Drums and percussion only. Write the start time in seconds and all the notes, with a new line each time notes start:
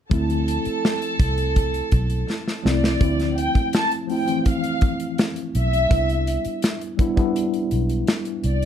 0.11 kick, closed hi-hat
0.30 closed hi-hat
0.48 closed hi-hat
0.65 closed hi-hat
0.85 snare
1.02 closed hi-hat
1.20 kick, closed hi-hat
1.38 closed hi-hat
1.56 kick, closed hi-hat
1.74 closed hi-hat
1.92 kick, closed hi-hat
2.10 closed hi-hat
2.30 snare
2.48 snare
2.66 snare
2.84 snare
3.01 kick, closed hi-hat
3.20 snare, closed hi-hat
3.38 closed hi-hat
3.55 kick, closed hi-hat
3.73 snare, closed hi-hat
3.91 closed hi-hat
4.09 open hi-hat
4.28 closed hi-hat
4.46 kick, closed hi-hat
4.64 closed hi-hat
4.81 kick, closed hi-hat
5.00 closed hi-hat
5.18 snare, closed hi-hat
5.36 closed hi-hat
5.55 closed hi-hat
5.73 closed hi-hat
5.91 kick, closed hi-hat
6.09 closed hi-hat
6.27 closed hi-hat
6.45 closed hi-hat
6.62 snare, closed hi-hat
6.81 closed hi-hat
6.99 kick, closed hi-hat
7.17 kick, closed hi-hat
7.36 closed hi-hat
7.54 closed hi-hat
7.71 closed hi-hat
7.89 closed hi-hat
8.07 snare, closed hi-hat
8.25 closed hi-hat
8.44 closed hi-hat